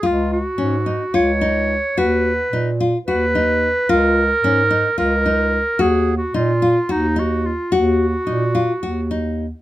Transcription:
0.03 bass clarinet C#2, nylon-string guitar F4, clarinet F4
0.33 clarinet F#4
0.58 bass clarinet G#2, nylon-string guitar C#4
0.86 nylon-string guitar D#4
1.13 bass clarinet C#2, nylon-string guitar F4, clarinet C#5
1.41 nylon-string guitar D#4
1.97 bass clarinet D#2, nylon-string guitar F#4, clarinet B4
2.52 bass clarinet A#2, nylon-string guitar D#4
2.80 nylon-string guitar F4
3.07 bass clarinet D#2, nylon-string guitar F#4, clarinet B4
3.35 nylon-string guitar D#4
3.89 bass clarinet C#2, nylon-string guitar F4, clarinet A#4
4.43 bass clarinet G#2, nylon-string guitar C#4
4.71 nylon-string guitar D#4
4.97 bass clarinet C#2, nylon-string guitar F4, clarinet A#4
5.26 nylon-string guitar D#4
5.79 bass clarinet D#2, nylon-string guitar F#4, clarinet G#4
6.17 clarinet F#4
6.34 bass clarinet A#2, nylon-string guitar D#4, clarinet F4
6.62 nylon-string guitar F4
6.89 bass clarinet D#2, clarinet D#4, nylon-string guitar F#4
7.16 nylon-string guitar D#4, clarinet F#4
7.46 clarinet F4
7.72 bass clarinet D#2, nylon-string guitar F#4, clarinet F#4
8.27 bass clarinet A#2, nylon-string guitar D#4
8.55 nylon-string guitar F4
8.83 bass clarinet D#2, nylon-string guitar F#4
9.11 nylon-string guitar D#4

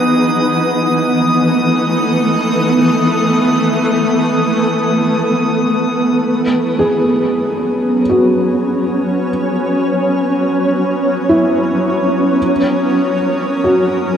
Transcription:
Already playing: ambient pad E3 B3 D#4 B4, synth drone F#3, synth texture D#6
0.25 ambient pad A3
0.58 ambient pad A4
6.23 synth drone F#3, ambient pad F#3, synth texture D#6
6.55 ambient pad C#4
6.79 felt piano G#4
7.65 ambient pad C#5
8.10 felt piano F#4
11.29 felt piano E4
12.63 ambient pad A#4
13.32 ambient pad D#4
13.64 felt piano F#4

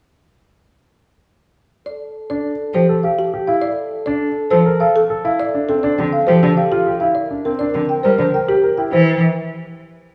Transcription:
1.86 french horn A4, marimba D5
2.30 grand piano D4, marimba D5
2.74 cello F3, grand piano G4, marimba C5
2.89 grand piano A4
3.04 grand piano G4, marimba F5
3.19 marimba G4
3.34 grand piano G4
3.47 grand piano E4, marimba F5
3.62 french horn A4, marimba D5
4.06 grand piano D4, marimba D5
4.51 cello F3, grand piano A4, marimba C5
4.66 grand piano A#4
4.80 grand piano A4, marimba F5
4.95 marimba A4
5.10 grand piano A4
5.24 grand piano E4, marimba F5
5.39 french horn A4, marimba D5
5.54 grand piano D4
5.69 grand piano C4, marimba A4
5.83 grand piano D4, marimba D5
5.98 cello D3, grand piano C4
6.13 marimba F5
6.27 cello F3, grand piano G4, marimba C5
6.42 cello D3, grand piano A4
6.57 grand piano G4, marimba F5
6.72 grand piano F4, marimba G4
6.87 grand piano G4
7.00 grand piano E4, marimba F5
7.15 french horn A#4, marimba D5
7.30 grand piano D4
7.45 grand piano C4, marimba A#4
7.59 grand piano D4, marimba D5
7.74 cello D3, grand piano C4
7.89 marimba G5
8.03 cello G3, grand piano A#4, marimba C5
8.18 cello D3, grand piano C5
8.34 grand piano A#4, marimba G5
8.48 grand piano G4, marimba G4
8.64 grand piano A#4
8.78 grand piano E4, marimba G5
8.92 cello E3, grand piano E4, marimba C5

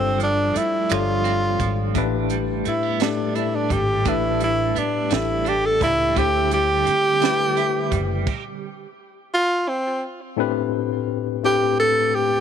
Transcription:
Already playing: fingered electric bass G1, clean electric guitar G2 G3 C4, tine electric piano G3 D4 F4 A4 C5, tenor saxophone C4
0.18 clean electric guitar F3, closed hi-hat
0.23 tenor saxophone D4
0.54 clean electric guitar A3, tenor saxophone E4, muted fingered electric bass stroke, closed hi-hat
0.90 fingered electric bass G1, clean electric guitar F3, tine electric piano G3 D4 F4 A4 C#5, tenor saxophone F4, finger snap, closed hi-hat
1.00 tine electric piano D5
1.24 clean electric guitar C4, closed hi-hat
1.60 fingered electric bass G#1, clean electric guitar F3, kick, closed hi-hat
1.95 fingered electric bass A1, tine electric piano A2 A3 C#4 G4 B4, clean electric guitar A2 D4, kick, closed hi-hat
2.03 tine electric piano D4
2.30 clean electric guitar G3, closed hi-hat
2.65 clean electric guitar A3, tenor saxophone E4, muted fingered electric bass stroke, closed hi-hat
2.83 clean electric guitar B3
3.00 tine electric piano A2 A3 D4 G4 A4, clean electric guitar G3, tenor saxophone D4, snare, closed hi-hat
3.35 clean electric guitar D4, tenor saxophone E4, closed hi-hat
3.55 tenor saxophone D4
3.70 fingered electric bass G#1, clean electric guitar G3, tenor saxophone G4, kick, closed hi-hat
4.05 fingered electric bass A1, clean electric guitar A2 D4, tine electric piano A2 A3 D4 G4 B4, tenor saxophone E4, kick, closed hi-hat
4.40 clean electric guitar G3, tenor saxophone E4, closed hi-hat
4.75 clean electric guitar B3, tenor saxophone D4, muted fingered electric bass stroke, closed hi-hat
5.10 fingered electric bass A1, tine electric piano A2 A3 D4 G4 A4, clean electric guitar G3, tenor saxophone E4, snare, closed hi-hat
5.45 clean electric guitar D4, tenor saxophone G4, closed hi-hat
5.66 tenor saxophone A4
5.80 fingered electric bass C#2, clean electric guitar G3, tenor saxophone E4, kick, closed hi-hat
6.16 fingered electric bass D2, clean electric guitar D3 E4, tine electric piano D3 A3 E4 G4 C5, tenor saxophone G4, kick, closed hi-hat
6.51 clean electric guitar G3, tenor saxophone G4, closed hi-hat
6.85 clean electric guitar C4, muted fingered electric bass stroke, closed hi-hat
7.21 tine electric piano D3 A3 E4 G4 B4, clean electric guitar G3, snare, closed hi-hat
7.57 clean electric guitar E4, closed hi-hat
7.91 fingered electric bass F#1, clean electric guitar G3, kick, closed hi-hat
8.27 kick, crash
9.34 tenor saxophone F4
9.69 tenor saxophone C4
10.37 tine electric piano A2 A3 C4 D4 G4 B4
11.43 tine electric piano A2 A3 C4 D4 G4 B4, tenor saxophone G4
11.80 tenor saxophone A4
12.15 tenor saxophone G4

